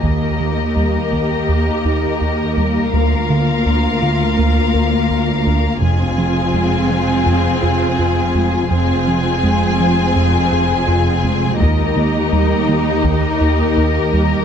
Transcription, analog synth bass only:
\new Staff \with { instrumentName = "Analog synth bass" } { \clef bass \time 4/4 \key f \minor \tempo 4 = 83 ees,8 ees8 ees,8 ees8 ees,8 ees,8 ees,8 ees,8 | d,8 d8 d,8 d8 d,8 d,8 d,8 d,8 | f,8 f8 f,8 f8 f,8 f,8 f,8 f,8 | f,8 f8 f,8 f8 f,8 f,8 f,8 f,8 |
ees,8 ees8 ees,8 ees8 ees,8 ees,8 ees,8 ees,8 | }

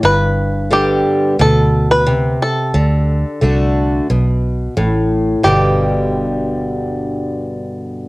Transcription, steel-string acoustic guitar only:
\new Staff \with { instrumentName = "Steel-string acoustic guitar" } { \clef bass \time 4/4 \key g \major \tempo 4 = 89 << { r4 <d g b g'>4 r2 | r4 <d a d' fis'>4 r2 | <g, b, d g b g'>1 | } \\ { g,2 b,4 c4 | d2 b,4 a,4 | r1 | } >> }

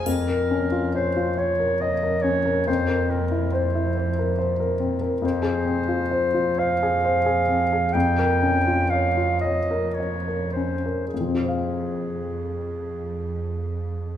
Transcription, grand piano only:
\new Staff \with { instrumentName = "Grand piano" } { \time 3/4 \key f \minor \tempo 4 = 66 f,16 bes'16 des'16 f'16 des''16 f'16 des''16 bes'16 des''16 bes'16 des'16 bes'16 | f,16 bes'16 c'16 e'16 c''16 e'16 c''16 bes'16 c''16 bes'16 c'16 bes'16 | f,16 aes'16 c'16 f'16 c''16 f'16 c''16 aes'16 c''16 aes'16 c'16 aes'16 | f,16 bes'16 des'16 f'16 des''16 f'16 des''16 bes'16 des''16 bes'16 des'16 bes'16 |
<f, f c' f' c'' f''>2. | }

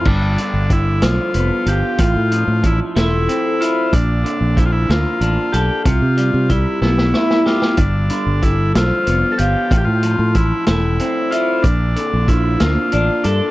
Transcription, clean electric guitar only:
\new Staff \with { instrumentName = "Clean electric guitar" } { \clef bass \time 6/8 \key f \lydian \tempo 4. = 62 g,8 d8 d8 f8 b8 f'8 | a,8 f8 f8 a8 c'8 e'8 | bes,8 d8 f8 bes8 d'8 a'8 | c8 g8 g8 b8 e'8 g'8 |
g,8 d8 d8 f8 b8 f'8 | a,8 f8 f8 a8 c'8 e'8 | bes,8 d8 f8 bes8 d'8 a'8 | }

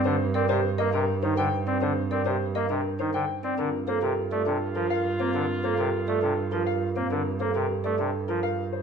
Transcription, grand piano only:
\new Staff \with { instrumentName = "Grand piano" } { \time 3/4 \key g \minor \tempo 4 = 102 c''16 r16 d''16 c''16 r16 ees''16 bes'16 r16 c''16 g''16 r16 d''16 | c''16 r16 d''16 c''16 r16 ees''16 bes'16 r16 c''16 g''16 r16 d''16 | bes'16 r16 c''16 bes'16 r16 d''16 a'16 r16 bes'16 f''16 r16 c''16 | bes'16 r16 c''16 bes'16 r16 d''16 a'16 r16 bes'16 f''16 r16 c''16 |
bes'16 r16 c''16 bes'16 r16 d''16 a'16 r16 bes'16 f''16 r16 c''16 | }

